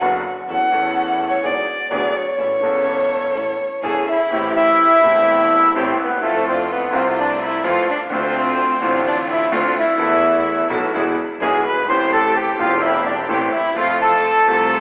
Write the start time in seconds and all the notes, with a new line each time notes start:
Already playing: F#5
0.00 F#1 F#2 D3 F#3 B3 D4 F#4 B4
0.48 E2 E3 A3 C#4 E4 A4 F#5
0.70 E2 E3 A3 C#4 E4 A4
1.29 C#5
1.43 G#1 G#2 F#3 B3 D4 F#4 G#4 D5
1.91 D1 D2 F#3 B3 D4 F#4 G#4 D5
2.16 C#5
2.38 A1 A2 E3 A3 C#4 E4 A4
2.60 E1 E2 E3 A3 C#4 E4 A4
2.65 A4
3.34 A1 A2 E3 A3 C#4 E4 A4
3.83 E1 E2 E3 A3 C#4 E4 G#4 A4 G#5
4.08 E4 E5
4.30 A1 A2 E3 A3 C4 G4
4.35 G4
4.56 E4 E5
5.02 E1 E2 E3 A3 C4 G4
5.06 G4
5.75 A1 A2 E3 A3 C4 G4 C5
5.97 D#2 B3 B4
6.02 D2 B3
6.11 D#2
6.17 E2 E4
6.21 F2 F3 A3 C4 F4 A4
6.26 A3
6.48 C4 C5 D5
6.53 D4
6.59 C4 C5
6.71 B3 B4
6.91 C2 C3 A3 C4 E4 F4
6.96 C4 C5
7.19 D4 D5
7.41 E4 E5
7.64 F2 E3 F3 A3 C4 E4 F4 F5
7.88 D4 D5
8.10 D2 D3 A3 C4 D4 F4 C5
8.80 A1 A2 D3 A3 C4 D4 F4
9.07 D4 D5
9.30 E4 E5
9.52 D2 D3 A3 C4 D4 F4 F5
9.78 E4 E5
9.98 E2 E3 A3 B3 E4 A4
10.69 B1 B2 E3 A3 B3 E4 A4
10.93 E2 E3 G#3 B3 E4 G#4
11.40 B1 B2 E3 G#3 B3 E4 G#4 G#5
11.65 G1 B4 B5
11.72 F#1
11.79 G1
11.84 G#1
11.88 A1 A2 E3 A3 C4 G4 C5 C6
11.92 G4
12.12 A4 A5
12.36 G4 G5
12.58 E1 E2 E3 A3 C4 F4 G4 F5
12.81 E4 E5
13.06 D4 D5
13.28 A1 A2 E3 A3 C4 G4 C5
13.52 E4 E5
13.74 F2 F3 A3 C4 F4 F5
13.79 F4 A4
14.01 A4 A5
14.45 C2 C3 F3 A3 C4 F4
14.50 A4